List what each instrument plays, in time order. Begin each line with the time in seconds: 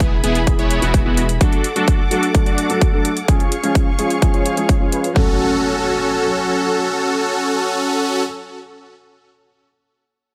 Already playing: sub bass E1, felt piano E3 G#3 B3 G#4, supersaw synth B3 E4 G#4, string section G#4 E5 B5, downlifter
0.00 kick, closed hi-hat
0.23 sub bass E1, felt piano E3 G#3 B3 G#4, supersaw synth B3 E4 G#4, closed hi-hat
0.35 closed hi-hat
0.47 felt piano E3 G#3 B3 G#4, kick, closed hi-hat
0.59 sub bass E1, supersaw synth B3 E4 C#5, closed hi-hat
0.71 closed hi-hat
0.82 sub bass E1, felt piano E3 G#3 B3 G#4, supersaw synth B3 E4 F#4, closed hi-hat
0.94 kick, closed hi-hat
1.05 sub bass E1, felt piano E3 G#3 B3 G#4, supersaw synth B3 E4 F#4
1.17 closed hi-hat
1.29 closed hi-hat
1.40 felt piano F#3 A3 D4 A4, supersaw synth D4 F#4 A4, string section A4 F#5 D6, kick, closed hi-hat
1.53 closed hi-hat
1.64 closed hi-hat
1.75 felt piano F#3 A3 D4 A4, supersaw synth D4 F#4 A4, closed hi-hat
1.88 kick, closed hi-hat
2.11 felt piano F#3 A3 D4 A4, supersaw synth D4 F#4 A4, closed hi-hat
2.23 closed hi-hat
2.34 felt piano F#3 A3 D4 A4, kick, closed hi-hat
2.46 supersaw synth D4 F#4 D5, closed hi-hat
2.58 closed hi-hat
2.69 felt piano F#3 A3 D4 A4, supersaw synth D4 F#4 A4, closed hi-hat
2.81 kick, closed hi-hat
2.93 felt piano F#3 A3 D4 A4, supersaw synth D4 F#4 A4
3.05 closed hi-hat
3.17 closed hi-hat
3.28 felt piano F3 G#3 C#4 G#4, supersaw synth C#4 F4 G#4, string section G#4 F5 C#6, kick, closed hi-hat
3.40 closed hi-hat
3.52 closed hi-hat
3.63 felt piano F3 G#3 C#4 G#4, supersaw synth C#4 F4 G#4, closed hi-hat
3.75 kick, closed hi-hat
3.98 felt piano F3 G#3 C#4 G#4, supersaw synth C#4 F4 G#4, closed hi-hat
4.10 closed hi-hat
4.22 felt piano F3 G#3 C#4 G#4, kick, closed hi-hat
4.34 supersaw synth C#4 F4 C#5, closed hi-hat
4.46 closed hi-hat
4.57 felt piano F3 G#3 C#4 G#4, closed hi-hat
4.69 supersaw synth C#4 F4 C#5, kick, closed hi-hat
4.80 felt piano F3 G#3 C#4 G#4
4.92 supersaw synth C#4 F4 B4, closed hi-hat
5.04 closed hi-hat
5.14 felt piano F#3 A3 C#4 A4, string section F#3 C#4 A4, supersaw synth C#4 F#4 A4, kick, impact